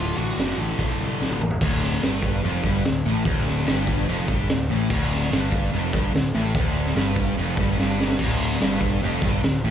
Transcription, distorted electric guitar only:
Already playing: D2 A2 D3
0.38 D2 A2 D3
1.62 D2
2.03 G2
2.43 F2
2.64 G2
2.85 D2
3.05 A2
3.26 D2
3.67 G2
4.09 F2
4.29 G2
4.50 D2
4.69 A2
4.91 D2
5.32 G2
5.72 F2
5.94 G2
6.14 D2
6.35 A2
6.55 D2
6.96 G2
7.37 F2
7.58 G2
7.79 G2
8.20 D2
8.61 G2
9.03 F2
9.23 G2
9.43 D2
9.64 A2

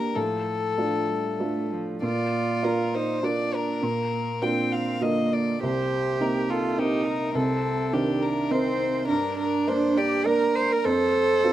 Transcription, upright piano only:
Already playing: G2 A#3 D4 G4
0.16 A2
0.78 A3 D4 F4
1.39 A3 D4 F4
2.02 A#2
2.63 F4 A#4 D5
3.23 D4 F4 A#4
3.83 A#2
4.42 D4 F4 A#4
5.01 D3 F4 A#4
5.63 C2
6.20 A#3 C4 D#4
6.77 C4 D#4 A#4
7.35 C2
7.92 D#3 C4 A#4
8.51 C4 D#4 A#4
9.09 G2
9.67 A#3 D4 A#4
10.25 A#3 D4 A#4
10.85 F2
11.44 C4 F4 A4

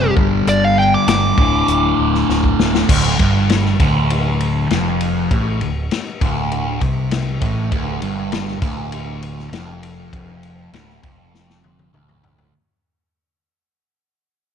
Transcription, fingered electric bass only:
Already playing: F#1
0.17 G1
0.47 G1
1.07 G1
1.38 D1
1.68 D1
1.99 D1
2.29 D1
2.59 D1
2.89 D1
3.20 G1
3.80 D1
4.71 F1
5.31 A1
5.62 D1
6.21 D1
6.82 C2
7.42 A1
7.72 D1
8.02 G1
8.62 D1
9.52 F1
10.13 F1
10.73 D1
11.04 F1
11.94 D1

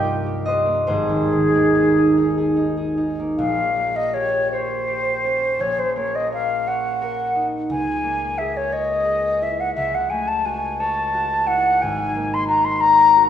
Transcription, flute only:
Already playing: G4
0.88 G#4
3.37 F5
3.95 D#5
4.13 C#5
4.51 C5
5.60 C#5
5.78 C5
5.95 C#5
6.14 D#5
6.33 F5
6.67 F#5
7.70 G#5
8.38 E5
8.56 C#5
8.72 D#5
9.42 E5
9.60 F#5
9.74 E5
9.94 F#5
10.09 G#5
10.27 A5
10.45 G#5
10.79 A5
11.46 F#5
11.81 G#5
12.33 C6
12.47 A#5
12.64 C6
12.80 A#5

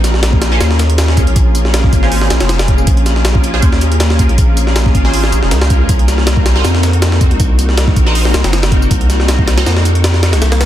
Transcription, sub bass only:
Already playing: A#1
0.61 D#2
1.28 A#1
1.36 A#1
1.93 G#1
2.31 A#1
2.41 F1
2.87 A#1
3.63 D#2
4.29 A#1
4.38 A#1
4.95 G#1
5.33 A#1
5.43 F1
5.51 C#2
5.89 C2
6.65 F2
7.31 C2
7.40 C2
7.96 A#1
8.34 C2
8.44 F#1
8.91 C2
9.66 F2
10.33 C2
10.42 C2

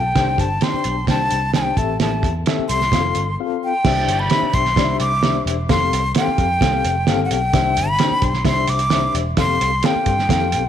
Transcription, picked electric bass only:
Already playing: B1
0.15 C2
0.38 G1
0.74 muted picked electric bass stroke
0.85 B1
1.07 C2
1.32 C2
1.77 A1
2.01 A1
2.23 E2
2.59 muted picked electric bass stroke
2.70 C2
2.92 F1
3.16 G1
3.85 C2
4.08 G1
4.42 muted picked electric bass stroke
4.54 B1
4.76 C2
5.00 C2
5.46 E1
5.70 F1
5.92 C2
6.28 muted picked electric bass stroke
6.38 F2
6.61 C2
6.84 F1
7.08 G1
7.31 B1
7.54 C2
7.77 G1
8.11 muted picked electric bass stroke
8.22 B1
8.45 C2
8.68 C2
9.15 E1
9.37 F1
9.61 C2
9.95 muted picked electric bass stroke
10.06 G2
10.29 F2
10.53 B1

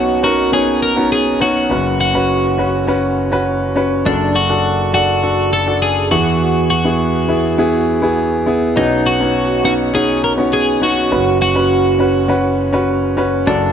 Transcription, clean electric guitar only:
Already playing: F#4
0.24 F#4
0.53 G#4
0.83 A#4
1.12 G#4
1.42 F#4
2.01 F#4
4.06 D4
4.36 F#4
4.94 F#4
5.53 A4
5.82 G#4
6.11 F#4
6.70 F#4
8.77 D#4
9.06 F#4
9.65 F#4
9.95 G#4
10.24 A#4
10.53 G#4
10.83 F#4
11.42 F#4
13.47 D4

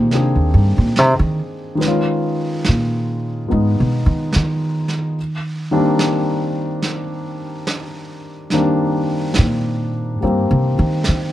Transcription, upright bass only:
Already playing: A#2
0.14 C3
0.35 D#2
0.54 G2
0.78 A#2
0.99 C3
1.19 D#3
2.68 A#2
3.52 G#2
3.80 B2
4.06 D#3
4.36 D#3
9.38 A#2
10.23 G2
10.51 C3
10.79 D#3
11.08 D#3

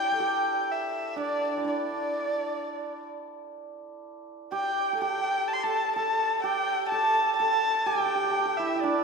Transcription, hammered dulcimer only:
Already playing: D4 E4 G4
0.12 A4
0.20 G4
1.16 D4
1.57 E4
1.65 D4
4.52 G4
4.93 A4
5.01 G4
5.64 A4
5.96 A4
6.44 G4
6.92 A4
7.40 A4
7.86 G4
7.95 G4
8.00 G4
8.06 G4
8.15 G4
8.24 G4
8.31 G4
8.39 G4
8.45 G4
8.59 E4
8.75 E4
8.83 D4

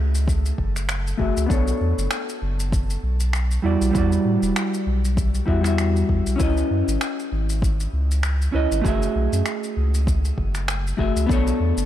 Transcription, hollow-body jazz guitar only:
Already playing: A3 F#4 G#4 E5
1.17 A3 F#4 G#4 E5
1.46 B3 D4
1.51 A4 C#5
3.62 G3 E4 F#4 D5
3.91 G3 E4
3.96 F#4 D5
5.46 G3 E4 F#4 E5
5.61 G3 E4
5.65 F#4 E5
6.36 C#4 E4
6.40 B4 D#5
8.52 C#4 E4 B4 D#5
8.81 A3 F#4
8.86 G#4 E5
10.97 A3 F#4 G#4 E5
11.26 B3 D4
11.31 A4 C#5

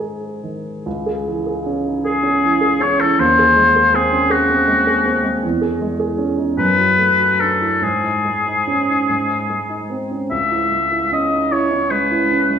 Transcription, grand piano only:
Already playing: G#2 D#3 D#4 G#5
0.00 G#4
0.44 D#3
0.86 C#2
1.06 G#4
1.26 E3
1.46 G#4
1.66 C#4
1.87 D#4
2.05 G#4
2.23 C#4
2.43 E3
2.61 G#4
2.80 C#4
3.00 E3
3.19 D#2
3.39 G#4
3.56 G#3
3.76 G#4
3.94 C4
4.12 C#4
4.30 G#4
4.50 C4
4.67 G#3
4.87 G#4
5.05 C4
5.23 G#3
5.43 E2
5.61 G#4
5.81 G#3
6.00 G#4
6.18 C#4
6.38 D#4
6.57 F#2
6.78 F#4
6.98 A3
7.19 F#4
7.40 D4
7.61 E4
7.81 G#2
8.04 D#4
8.25 G#3
8.47 D#4
8.67 C#4
8.88 D#4
9.09 G#2
9.30 D#4
9.50 G#3
9.69 D#4
9.90 C4
10.11 C#4
10.31 C#2
10.51 E4
10.71 G#3
10.92 E4
11.12 C#4
11.32 D#4
11.51 E4
11.71 C#4
11.90 G#3
12.11 E4
12.31 C#4
12.50 G#3

